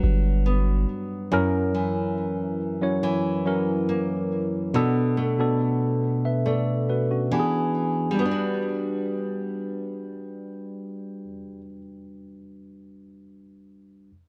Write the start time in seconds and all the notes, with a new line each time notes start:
Already playing: G2 F#3 G3 B3 D4 F#4 B4
0.04 G1
0.46 B3
1.32 F#2 F#3 C#4 E4 A#4
1.74 E3
2.81 F#3 C#4 E4 C#5
3.03 E3
3.46 F#3 C#4 E4 A#4
3.89 A#3
4.74 B2 B3 D4 A4
5.17 A3
5.39 B2 B3 D4 A4
6.25 B4 E5
6.46 A3 A4 D5
6.90 F#4 B4
7.11 C#4 F#4
7.31 E3 B3 D4 G4
7.40 G#4
8.11 G3
8.17 B3 D4 F#4
8.22 D4 B4
8.31 F#4